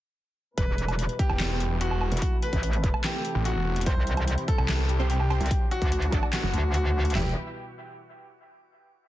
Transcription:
0.58 0.66 E1 medium
0.58 2.20 B2 medium
0.58 2.20 E3 medium
0.58 2.20 G3 medium
0.58 3.83 E4 medium
0.58 1.11 B4 loud
0.58 2.20 B4 medium
0.58 kick loud
0.58 closed hi-hat medium
0.68 1.07 E1 loud
0.78 closed hi-hat medium
0.88 closed hi-hat soft
0.88 low woodblock medium
0.99 closed hi-hat medium
1.09 closed hi-hat soft
1.19 1.73 G4 medium
1.19 kick loud
1.19 closed hi-hat medium
1.30 1.48 E1 medium
1.30 low woodblock medium
1.40 snare loud
1.40 clap medium
1.40 closed hi-hat medium
1.50 1.90 E1 loud
1.60 closed hi-hat medium
1.81 2.34 F#4 medium
1.81 closed hi-hat medium
1.91 2.10 E1 loud
1.91 low woodblock medium
2.01 low woodblock medium
2.12 2.20 E1 loud
2.12 closed hi-hat soft
2.17 closed hi-hat medium
2.22 5.47 C3 medium
2.22 5.48 E3 medium
2.22 3.85 A3 medium
2.22 3.85 A4 medium
2.22 kick loud
2.22 closed hi-hat medium
2.43 2.96 B4 medium
2.43 closed hi-hat medium
2.53 2.92 A1 loud
2.53 kick medium
2.53 closed hi-hat soft
2.63 closed hi-hat medium
2.73 closed hi-hat soft
2.84 kick loud
2.84 closed hi-hat medium
2.94 low woodblock medium
3.04 3.39 G4 medium
3.04 snare loud
3.04 clap loud
3.04 closed hi-hat medium
3.25 closed hi-hat medium
3.35 3.54 A1 loud
3.45 3.80 F#4 medium
3.45 closed hi-hat medium
3.56 3.85 E1 loud
3.76 closed hi-hat soft
3.81 closed hi-hat medium
3.86 3.95 C2 loud
3.86 5.49 G3 medium
3.86 5.49 E4 medium
3.86 5.49 G4 medium
3.86 4.40 C5 loud
3.86 kick loud
3.86 closed hi-hat medium
3.97 4.36 C2 loud
4.07 closed hi-hat medium
4.17 closed hi-hat soft
4.17 low woodblock medium
4.28 closed hi-hat medium
4.38 closed hi-hat soft
4.48 5.02 A4 medium
4.48 kick loud
4.48 closed hi-hat medium
4.58 4.77 C2 loud
4.58 low woodblock medium
4.69 snare loud
4.69 clap medium
4.69 closed hi-hat medium
4.79 5.18 C2 loud
4.89 closed hi-hat medium
4.99 5.28 C4 medium
4.99 5.28 G4 medium
4.99 5.28 C5 loud
5.10 5.63 G4 medium
5.10 closed hi-hat medium
5.20 5.39 C2 loud
5.20 low woodblock medium
5.30 5.40 C4 medium
5.30 5.40 G4 medium
5.30 5.40 C5 loud
5.30 low woodblock medium
5.41 5.49 C2 medium
5.41 closed hi-hat soft
5.46 closed hi-hat medium
5.51 7.14 A2 medium
5.51 7.14 D3 medium
5.51 7.14 F#3 medium
5.51 7.14 D4 medium
5.51 7.14 F#4 medium
5.51 kick loud
5.51 closed hi-hat medium
5.71 6.25 F#4 loud
5.71 closed hi-hat medium
5.82 6.21 D2 loud
5.82 kick medium
5.82 closed hi-hat soft
5.92 closed hi-hat medium
6.02 closed hi-hat soft
6.12 6.22 D4 medium
6.12 6.22 A4 medium
6.12 6.22 D5 medium
6.12 kick loud
6.12 closed hi-hat medium
6.23 low woodblock medium
6.33 6.67 F#4 medium
6.33 snare loud
6.33 clap medium
6.33 closed hi-hat medium
6.43 6.52 F#1 loud
6.54 7.14 D2 loud
6.54 closed hi-hat medium
6.74 7.08 F#4 medium
6.74 closed hi-hat medium
7.05 closed hi-hat soft
7.10 closed hi-hat medium
7.15 7.34 E1 medium
7.15 7.34 B2 medium
7.15 7.34 E3 medium
7.15 7.34 G3 medium
7.15 7.30 E4 medium
7.15 7.34 E4 medium
7.15 7.30 G4 medium
7.15 7.34 G4 medium
7.15 7.30 B4 medium
7.15 7.30 E5 medium
7.15 snare loud
7.15 clap medium
7.15 floor tom loud

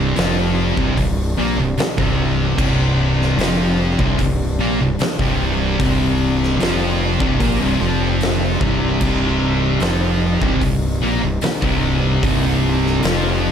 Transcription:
0.00 0.13 C1 loud
0.00 0.16 C2 loud
0.00 0.16 C3 loud
0.00 13.52 C3 medium
0.00 13.52 G3 medium
0.00 8.98 D4 medium
0.16 0.73 F1 medium
0.16 0.76 F2 medium
0.16 0.76 F3 loud
0.16 snare loud
0.16 open hi-hat medium
0.77 0.96 C1 loud
0.77 0.96 C2 medium
0.77 0.96 C3 loud
0.77 kick loud
0.97 1.35 C1 medium
0.97 1.29 C2 medium
0.97 kick medium
0.97 open hi-hat medium
1.37 1.57 A#1 loud
1.37 1.56 A#2 loud
1.37 1.57 A#3 loud
1.57 1.76 C1 medium
1.57 1.76 C2 medium
1.78 muted distorted electric guitar stroke medium
1.78 muted fingered electric bass stroke soft
1.78 snare loud
1.78 open hi-hat medium
1.98 2.54 C1 medium
1.98 2.57 C2 medium
1.98 2.57 C3 loud
1.98 kick loud
2.58 3.34 C1 loud
2.58 3.37 C2 loud
2.58 3.38 C3 loud
2.58 kick loud
2.58 crash loud
3.22 snare soft
3.36 3.94 F1 loud
3.36 3.97 F2 loud
3.36 3.97 F3 loud
3.36 open hi-hat medium
3.41 snare loud
3.99 4.18 C1 loud
3.99 4.18 C2 medium
3.99 4.18 C3 loud
3.99 kick loud
4.19 4.56 C1 medium
4.19 4.51 C2 medium
4.19 kick loud
4.19 open hi-hat medium
4.58 4.78 A#1 loud
4.58 4.78 A#2 medium
4.58 4.78 A#3 loud
4.78 4.99 C1 medium
4.78 4.98 C2 medium
4.99 muted distorted electric guitar stroke medium
4.99 muted fingered electric bass stroke soft
4.99 snare loud
4.99 open hi-hat medium
5.18 5.75 C1 medium
5.18 5.77 C2 loud
5.18 5.77 C3 loud
5.18 kick loud
5.78 6.56 C1 medium
5.78 6.58 C2 medium
5.78 6.59 C3 loud
5.78 kick loud
5.78 open hi-hat medium
6.43 snare soft
6.58 7.17 F1 loud
6.58 7.18 F2 medium
6.58 7.19 F3 loud
6.58 open hi-hat medium
6.63 snare loud
7.19 7.39 C1 loud
7.19 7.38 C2 loud
7.19 7.38 C3 loud
7.19 kick loud
7.38 7.59 A#1 medium
7.38 7.58 A#2 medium
7.38 7.59 A#3 loud
7.38 kick loud
7.38 open hi-hat medium
7.43 7.61 A#3 loud
7.59 7.79 C1 loud
7.59 7.78 C2 medium
7.59 7.79 C3 loud
7.79 8.57 F1 loud
7.79 8.59 F2 medium
7.79 8.59 F3 loud
8.21 snare loud
8.21 open hi-hat medium
8.60 8.98 C1 loud
8.60 8.99 C2 medium
8.60 8.99 C3 loud
8.60 kick loud
9.00 9.78 C1 loud
9.00 9.80 C2 medium
9.00 9.80 C3 loud
9.00 13.52 D#4 medium
9.00 kick loud
9.00 crash loud
9.80 10.38 F1 loud
9.80 10.40 F2 loud
9.80 10.41 F3 loud
9.80 snare loud
9.80 open hi-hat medium
10.42 10.60 C1 loud
10.42 10.60 C2 medium
10.42 10.61 C3 medium
10.42 kick loud
10.61 10.99 C1 medium
10.61 10.94 C2 medium
10.61 kick medium
10.61 open hi-hat medium
11.01 11.21 A#1 medium
11.01 11.21 A#2 loud
11.01 11.21 A#3 loud
11.21 11.41 C1 medium
11.21 11.41 C2 medium
11.41 muted distorted electric guitar stroke medium
11.41 muted fingered electric bass stroke soft
11.41 snare loud
11.41 open hi-hat medium
11.62 12.19 C1 loud
11.62 12.21 C2 loud
11.62 12.22 C3 loud
11.62 kick loud
12.22 12.99 C1 medium
12.22 13.02 C2 loud
12.22 13.03 C3 loud
12.22 kick loud
12.22 open hi-hat medium
12.86 snare soft
13.02 13.52 F1 loud
13.02 13.52 F2 medium
13.02 13.52 F3 loud
13.02 snare loud
13.02 open hi-hat medium

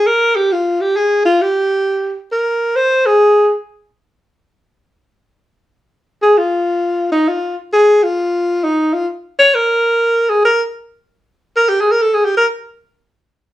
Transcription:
0.07 0.37 A#4 medium
0.36 0.54 G4 loud
0.52 0.82 F4 medium
0.81 0.98 G4 medium
0.96 1.25 G#4 medium
1.25 1.43 F4 medium
1.42 2.16 G4 medium
2.32 2.78 A#4 medium
2.76 3.08 C5 loud
3.06 3.50 G#4 medium
6.22 6.39 G#4 medium
6.38 7.11 F4 medium
7.12 7.30 D#4 medium
7.28 7.57 F4 medium
7.73 8.05 G#4 medium
8.03 8.65 F4 medium
8.64 8.95 D#4 medium
8.93 9.08 F4 medium
9.39 9.56 C#5 loud
9.55 10.31 A#4 medium
10.29 10.43 G#4 medium
10.45 10.62 A#4 medium
11.56 11.70 A#4 medium
11.69 11.82 G4 medium
11.81 11.93 G#4 medium
11.91 12.03 A#4 medium
12.02 12.15 A4 medium
12.14 12.26 G#4 medium
12.25 12.36 G4 medium
12.37 12.46 A#4 medium

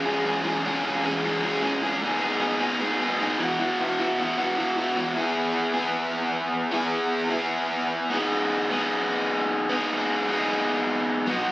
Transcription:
0.04 0.24 E3 medium
0.04 0.25 G#3 medium
0.04 0.25 C#4 medium
0.04 0.26 G#4 medium
0.25 0.43 E3 medium
0.25 0.44 G#3 medium
0.25 0.44 C#4 medium
0.25 0.46 G#4 loud
0.44 0.64 E3 loud
0.44 0.65 G#3 loud
0.44 0.65 C#4 loud
0.44 0.66 G#4 loud
0.65 0.83 E3 medium
0.65 0.84 G#3 medium
0.65 0.84 C#4 medium
0.65 0.85 G#4 loud
0.84 1.02 E3 medium
0.84 1.03 G#3 medium
0.84 1.04 C#4 medium
0.84 1.04 G#4 medium
1.04 1.23 E3 loud
1.04 1.23 G#3 medium
1.04 1.24 C#4 medium
1.04 1.25 G#4 loud
1.24 1.41 E3 medium
1.24 1.41 G#3 loud
1.24 1.43 C#4 medium
1.24 1.43 G#4 loud
1.42 1.61 E3 medium
1.42 1.61 G#3 medium
1.42 1.62 C#4 medium
1.42 1.62 G#4 medium
1.62 1.80 E3 medium
1.62 1.81 G#3 medium
1.62 1.81 C#4 medium
1.62 1.82 G#4 medium
1.81 2.00 E3 medium
1.81 2.01 G#3 medium
1.81 2.01 C#4 medium
1.81 2.01 G#4 loud
2.01 2.19 D#3 loud
2.01 2.20 B3 loud
2.01 2.20 D#4 loud
2.01 2.20 G#4 loud
2.20 2.38 D#3 medium
2.20 2.40 B3 medium
2.20 2.40 D#4 loud
2.20 2.40 G#4 medium
2.39 2.58 D#3 medium
2.39 2.59 B3 medium
2.39 2.59 D#4 loud
2.39 2.60 G#4 medium
2.59 2.78 D#3 medium
2.59 2.79 B3 medium
2.59 2.79 D#4 loud
2.59 2.79 G#4 medium
2.79 2.98 D#3 medium
2.79 2.99 B3 loud
2.79 2.99 D#4 loud
2.79 2.99 G#4 loud
2.99 3.17 D#3 medium
2.99 3.19 B3 medium
2.99 3.19 D#4 medium
2.99 3.19 G#4 loud
3.19 3.38 D#3 medium
3.19 3.39 B3 medium
3.19 3.38 D#4 medium
3.19 3.39 G#4 medium
3.39 3.57 E3 loud
3.39 3.58 B3 medium
3.39 3.58 E4 medium
3.39 3.59 F#4 loud
3.58 3.78 E3 loud
3.58 3.79 B3 loud
3.58 3.80 E4 loud
3.58 3.80 F#4 loud
3.79 3.98 E3 medium
3.79 3.98 B3 medium
3.79 3.98 E4 medium
3.79 3.99 F#4 loud
3.99 4.18 E3 medium
3.99 4.17 B3 medium
3.99 4.18 E4 medium
3.99 4.19 F#4 medium
4.19 4.36 E3 medium
4.19 4.36 B3 loud
4.19 4.37 E4 medium
4.19 4.38 F#4 medium
4.37 4.55 E3 medium
4.37 4.56 B3 loud
4.37 4.56 E4 medium
4.37 4.57 F#4 loud
4.56 4.75 E3 medium
4.56 4.75 B3 medium
4.56 4.75 E4 medium
4.56 4.76 F#4 medium
4.76 4.95 E3 medium
4.76 4.95 B3 medium
4.76 4.96 E4 medium
4.76 4.96 F#4 medium
4.96 5.15 E3 medium
4.96 5.12 B3 medium
4.96 5.14 E4 loud
4.96 5.16 F#4 medium
5.13 5.76 B3 medium
5.13 5.75 E4 medium
5.13 5.73 G#4 medium
5.73 6.71 B3 medium
5.73 6.71 E4 medium
5.73 6.74 G#4 medium
6.71 7.33 B3 medium
6.71 7.30 E4 medium
6.71 7.30 G#4 loud
7.30 8.09 B3 medium
7.30 8.10 E4 medium
7.30 8.13 G#4 medium
8.10 8.70 B3 medium
8.10 8.72 D#4 medium
8.10 8.73 G#4 medium
8.71 9.69 B3 medium
8.71 9.70 D#4 medium
8.71 9.72 G#4 medium
9.69 10.28 B3 medium
9.69 10.30 D#4 medium
9.69 10.31 G#4 medium
10.28 11.27 B3 medium
10.28 11.28 D#4 medium
10.28 11.30 G#4 medium
11.27 11.52 F#3 medium
11.27 11.52 B3 medium
11.27 11.52 D#4 medium
11.27 11.52 F#4 medium

